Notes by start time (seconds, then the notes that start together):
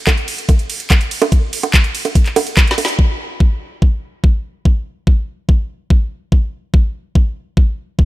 0.07 kick, clap, closed hi-hat, high bongo
0.17 closed hi-hat
0.28 open hi-hat, ride
0.38 closed hi-hat
0.49 kick, closed hi-hat, high bongo
0.59 closed hi-hat
0.70 open hi-hat, ride
0.80 closed hi-hat
0.90 kick, clap, closed hi-hat, high bongo
1.01 closed hi-hat
1.11 open hi-hat, ride
1.22 closed hi-hat, high bongo
1.32 kick, closed hi-hat
1.53 open hi-hat, ride
1.63 closed hi-hat, high bongo
1.74 kick, clap, closed hi-hat
1.84 closed hi-hat
1.95 open hi-hat, ride
2.05 closed hi-hat, high bongo
2.15 kick, closed hi-hat
2.26 clap, closed hi-hat
2.36 open hi-hat, ride, high bongo
2.47 closed hi-hat
2.57 kick, snare, clap, closed hi-hat
2.67 snare, closed hi-hat
2.78 open hi-hat, ride, high bongo
2.85 snare, closed hi-hat
2.99 kick
3.40 kick
3.82 kick
4.24 kick
4.65 kick
5.07 kick
5.49 kick
5.90 kick
6.32 kick
6.74 kick
7.15 kick
7.57 kick
7.99 kick